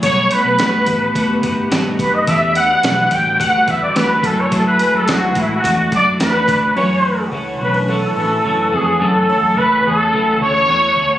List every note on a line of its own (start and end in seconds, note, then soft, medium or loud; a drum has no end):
0.00 0.26 B1 loud
0.00 0.31 B2 medium
0.00 2.25 D#3 medium
0.00 0.32 G3 medium
0.00 6.72 A3 medium
0.00 0.32 A3 medium
0.00 2.24 B3 medium
0.00 2.25 G4 medium
0.00 0.33 C#5 loud
0.00 kick loud
0.00 closed hi-hat loud
0.05 0.32 D#4 medium
0.05 0.30 F#4 medium
0.05 0.29 B4 medium
0.30 0.59 A3 soft
0.30 0.59 D#4 medium
0.30 0.60 F#4 medium
0.30 0.59 B4 medium
0.30 1.72 B4 loud
0.30 closed hi-hat medium
0.45 0.56 B1 medium
0.59 0.87 B2 medium
0.59 0.88 G3 medium
0.59 0.88 A3 medium
0.59 0.88 D#4 medium
0.59 0.87 F#4 medium
0.59 0.85 B4 medium
0.59 snare loud
0.59 closed hi-hat medium
0.86 1.10 A1 medium
0.86 1.14 D#4 soft
0.86 1.15 F#4 medium
0.86 1.15 B4 medium
0.86 kick medium
0.86 closed hi-hat medium
0.91 1.13 A3 soft
1.14 1.38 F#1 medium
1.14 1.43 A3 medium
1.14 1.44 D#4 medium
1.14 1.42 F#4 medium
1.14 1.41 B4 medium
1.14 kick loud
1.14 closed hi-hat medium
1.42 1.66 G1 loud
1.42 1.70 A3 soft
1.42 1.70 D#4 medium
1.42 1.71 F#4 medium
1.42 1.71 B4 medium
1.42 kick medium
1.42 closed hi-hat medium
1.70 1.94 G#1 medium
1.70 1.99 B2 medium
1.70 1.99 G3 medium
1.70 2.00 A3 medium
1.70 1.99 D#4 medium
1.70 1.98 F#4 medium
1.70 1.97 B4 loud
1.70 snare loud
1.70 closed hi-hat medium
1.98 2.22 F#1 medium
1.98 2.27 A3 soft
1.98 2.28 D#4 medium
1.98 2.28 F#4 medium
1.98 2.27 B4 medium
1.98 2.15 B4 medium
1.98 kick medium
1.98 closed hi-hat medium
2.14 2.29 D#5 medium
2.27 2.73 E2 medium
2.27 4.22 D3 medium
2.27 2.56 E3 medium
2.27 4.22 G3 medium
2.27 2.56 A3 medium
2.27 2.56 D4 medium
2.27 6.72 F#4 medium
2.27 2.56 G4 medium
2.27 2.55 B4 medium
2.27 2.55 E5 loud
2.27 kick loud
2.27 closed hi-hat medium
2.55 2.84 G4 medium
2.55 2.84 B4 medium
2.55 3.14 F#5 loud
2.55 closed hi-hat medium
2.60 2.84 D4 soft
2.83 3.06 B1 medium
2.83 3.12 E3 medium
2.83 3.12 A3 medium
2.83 3.12 D4 medium
2.83 3.11 G4 medium
2.83 3.09 B4 medium
2.83 snare loud
2.83 closed hi-hat medium
3.10 3.46 A1 medium
3.10 3.39 D4 soft
3.10 3.40 G4 medium
3.10 3.39 B4 soft
3.10 3.39 G5 loud
3.10 kick medium
3.10 closed hi-hat medium
3.39 3.68 A3 medium
3.39 3.68 D4 medium
3.39 3.67 G4 medium
3.39 3.65 B4 medium
3.39 3.71 F#5 loud
3.39 kick loud
3.39 closed hi-hat medium
3.66 3.90 E2 loud
3.66 3.94 D4 medium
3.66 3.95 G4 medium
3.66 3.95 B4 medium
3.66 3.81 E5 loud
3.66 kick medium
3.66 closed hi-hat medium
3.82 3.98 D5 loud
3.94 4.18 D2 medium
3.94 4.23 E3 medium
3.94 4.23 A3 medium
3.94 4.24 D4 medium
3.94 4.22 G4 medium
3.94 4.27 B4 loud
3.94 4.24 B4 medium
3.94 snare loud
3.94 closed hi-hat medium
4.23 4.46 F#2 loud
4.23 6.74 E3 medium
4.23 5.62 G#3 medium
4.23 4.51 A3 soft
4.23 4.51 E4 medium
4.23 4.51 G#4 medium
4.23 4.41 A4 loud
4.23 kick medium
4.23 closed hi-hat medium
4.40 4.52 C#5 medium
4.50 4.74 F#2 loud
4.50 4.79 F#3 medium
4.50 4.80 A3 medium
4.50 4.80 E4 medium
4.50 4.78 G#4 medium
4.50 4.66 A4 medium
4.50 kick loud
4.50 closed hi-hat loud
4.67 4.97 B4 loud
4.79 5.08 E4 medium
4.79 5.08 G#4 medium
4.79 closed hi-hat loud
4.83 5.06 A3 medium
4.94 5.05 F#2 medium
4.94 5.12 A4 loud
5.07 5.30 C#2 loud
5.07 5.36 F#3 medium
5.07 5.36 A3 medium
5.07 5.36 E4 medium
5.07 5.40 F#4 medium
5.07 5.33 G#4 loud
5.07 snare loud
5.07 closed hi-hat medium
5.34 5.59 A1 loud
5.34 5.65 E4 medium
5.34 5.63 G#4 medium
5.34 kick medium
5.34 closed hi-hat medium
5.38 5.62 A3 soft
5.38 5.52 E4 medium
5.55 5.92 F#4 medium
5.62 5.87 E2 loud
5.62 5.91 E3 medium
5.62 5.92 A3 medium
5.62 6.75 D4 medium
5.62 5.92 D4 medium
5.62 5.90 F#4 medium
5.62 kick loud
5.62 closed hi-hat loud
5.91 6.20 F#2 medium
5.91 6.19 A3 soft
5.91 6.20 D4 medium
5.91 6.20 F#4 medium
5.91 kick medium
5.91 closed hi-hat medium
5.95 6.07 D5 loud
6.19 6.42 E2 loud
6.19 6.48 E3 medium
6.19 6.48 A3 medium
6.19 6.48 D4 medium
6.19 6.46 F#4 medium
6.19 6.73 B4 loud
6.19 snare loud
6.19 closed hi-hat medium
6.47 6.71 D2 loud
6.47 6.76 A3 soft
6.47 6.77 D4 medium
6.47 6.76 F#4 medium
6.47 kick medium
6.47 closed hi-hat medium
6.76 7.21 F#2 loud
6.76 7.04 F#2 medium
6.76 7.04 C#3 medium
6.76 7.04 E3 medium
6.76 7.04 A3 medium
6.76 7.03 C#4 medium
6.76 7.04 E4 medium
6.76 7.02 F#4 medium
6.76 7.28 C#5 medium
6.76 7.03 C#5 loud
7.03 7.30 E3 soft
7.03 7.32 A3 soft
7.03 7.33 C#4 medium
7.03 7.32 D4 medium
7.03 7.32 F#4 medium
7.03 7.32 B4 medium
7.31 7.54 C#2 medium
7.31 7.60 E3 medium
7.31 7.61 A3 medium
7.31 7.60 C#4 medium
7.31 7.46 E4 medium
7.31 7.58 F#4 medium
7.31 7.45 C#5 medium
7.60 8.05 B1 medium
7.60 7.88 E3 soft
7.60 7.89 A3 soft
7.60 7.89 C#4 soft
7.60 7.88 F#4 medium
7.60 7.75 B4 medium
7.74 7.88 D4 medium
7.74 7.88 B4 medium
7.88 8.17 F#2 medium
7.88 8.17 C#3 medium
7.88 8.17 E3 medium
7.88 8.17 A3 medium
7.88 8.15 C#4 medium
7.88 8.16 C#4 medium
7.88 8.14 F#4 medium
7.88 8.15 A4 medium
7.88 8.76 A4 medium
8.16 8.39 A1 loud
8.16 8.42 E3 soft
8.16 8.43 A3 medium
8.16 8.45 C#4 soft
8.16 8.30 D4 medium
8.16 8.44 F#4 medium
8.16 8.30 B4 medium
8.43 8.67 F#1 medium
8.43 8.72 E3 medium
8.43 8.73 A3 medium
8.43 8.72 C#4 medium
8.43 8.70 F#4 medium
8.71 8.95 F2 medium
8.71 8.99 E3 soft
8.71 9.00 A3 soft
8.71 9.00 C#4 medium
8.71 9.00 F#4 medium
8.71 9.03 G#4 medium
9.00 9.28 F#2 medium
9.00 9.23 F#2 medium
9.00 9.28 C#3 medium
9.00 9.29 E3 medium
9.00 9.29 A3 medium
9.00 9.28 C#4 medium
9.00 9.26 F#4 medium
9.00 9.59 A4 medium
9.27 9.54 E3 soft
9.27 9.55 A3 soft
9.27 9.56 C#4 soft
9.27 9.43 E4 soft
9.27 9.56 F#4 medium
9.27 9.42 C#5 medium
9.43 9.54 F#2 medium
9.55 9.79 C#2 medium
9.55 9.84 E3 medium
9.55 9.85 A3 medium
9.55 9.84 C#4 medium
9.55 9.82 F#4 medium
9.55 9.85 B4 loud
9.83 10.07 E2 loud
9.83 10.12 A3 soft
9.83 10.13 C#4 medium
9.83 10.12 F#4 medium
9.83 10.38 A4 loud
9.87 10.12 E3 soft
10.12 10.35 C#2 medium
10.12 10.40 F#2 medium
10.12 10.41 C#3 medium
10.12 10.41 E3 medium
10.12 10.41 A3 medium
10.12 10.40 C#4 medium
10.12 10.39 F#4 medium
10.40 10.64 D2 medium
10.40 10.66 E3 soft
10.40 10.68 A3 soft
10.40 10.69 C#4 medium
10.40 10.69 F#4 medium
10.40 11.19 C#5 loud
10.68 10.91 E2 loud
10.68 10.96 E3 medium
10.68 10.97 A3 medium
10.68 10.96 C#4 medium
10.68 10.94 F#4 medium
10.95 11.19 D2 loud
10.95 11.19 A3 soft
10.95 11.19 C#4 soft
10.95 11.19 F#4 medium